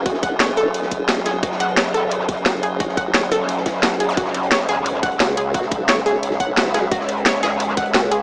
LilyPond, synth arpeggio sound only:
\new Staff \with { instrumentName = "Synth arpeggio sound" } { \time 4/4 \key fis \minor \tempo 4 = 175 fis'8 fis''8 cis''8 a'8 r4 fis'8 gis'8 | fis'8 fis''8 cis''8 a'8 r4 fis'8 gis'8 | fis'8 fis''8 cis''8 a'8 r4 fis'8 gis'8 | fis'8 r8 cis''8 gis'8 r8 fis''8 fis'8 gis'8 |
fis'8 r8 cis''8 gis'8 r8 fis''8 fis'8 gis'8 | fis'8 r8 cis''8 gis'8 r8 fis''8 fis'8 gis'8 | }